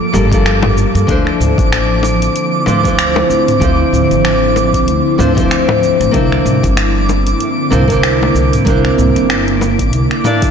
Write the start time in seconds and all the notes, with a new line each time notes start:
Already playing: F3 A#3 F4 A4 D6
0.13 G1 G3 A#3 F4 A4, mid tom, high bongo, cabasa
0.30 G3 A#3 F4, kick, closed hi-hat, cabasa
0.34 A4
0.46 finger snap, closed hi-hat, cabasa
0.62 mid tom, high bongo
0.78 cabasa
0.95 G2, closed hi-hat, cabasa
1.07 D2 D3 F3 C4 D4 E4, kick, closed hi-hat, cabasa
1.11 C5
1.27 finger snap
1.40 D2, mid tom, cabasa
1.58 A1, kick, closed hi-hat, cabasa
1.73 finger snap, closed hi-hat, cabasa
2.03 high bongo, cabasa
2.22 closed hi-hat, cabasa
2.36 closed hi-hat, cabasa
2.66 D2 F3 D4 E4 C5, mid tom, high bongo, cabasa
2.83 F3 D4 E4, kick, closed hi-hat, cabasa
2.88 C5
2.99 finger snap, closed hi-hat, cabasa
3.16 high bongo
3.30 D2, cabasa
3.48 closed hi-hat, mid tom, cabasa
3.60 D2 F3 D4 E4, kick, closed hi-hat, cabasa
3.64 C5
3.93 D2, mid tom, cabasa
4.11 A1, closed hi-hat, cabasa
4.25 finger snap, closed hi-hat, cabasa
4.56 high bongo, cabasa
4.74 kick, closed hi-hat, cabasa
4.87 D2, closed hi-hat, cabasa
5.18 D2 F3 D4 E4 C5, mid tom, high bongo, cabasa
5.35 F3 D4 E4, kick, closed hi-hat, cabasa
5.40 C5
5.51 finger snap, closed hi-hat, cabasa
5.69 mid tom, high bongo
5.83 cabasa
6.01 A1, closed hi-hat, cabasa
6.11 C2 A#3 D4 E4, kick, closed hi-hat, cabasa
6.16 C5
6.32 finger snap
6.46 C2, mid tom, cabasa
6.63 G1, kick, closed hi-hat, cabasa
6.77 finger snap, closed hi-hat, cabasa
7.09 high bongo, cabasa
7.27 closed hi-hat, cabasa
7.40 closed hi-hat, cabasa
7.70 C2 A#3 D4 E4 C5, mid tom, high bongo, cabasa
7.88 A#3 D4 E4, kick, closed hi-hat, cabasa
7.92 C5
8.03 finger snap, closed hi-hat, cabasa
8.23 high bongo
8.35 C2, cabasa
8.53 closed hi-hat, mid tom, cabasa
8.65 C2 A#3 D4 E4, kick, closed hi-hat, cabasa
8.69 C5
8.85 finger snap, closed hi-hat
8.98 C2, mid tom, cabasa
9.16 G1, closed hi-hat, cabasa
9.30 finger snap, closed hi-hat, cabasa
9.48 closed hi-hat
9.61 high bongo, cabasa
9.79 kick, closed hi-hat, cabasa
9.92 C2, closed hi-hat, cabasa
10.11 finger snap, closed hi-hat
10.24 A#3 D4 E4 D5, mid tom, high bongo, cabasa
10.42 kick, closed hi-hat, cabasa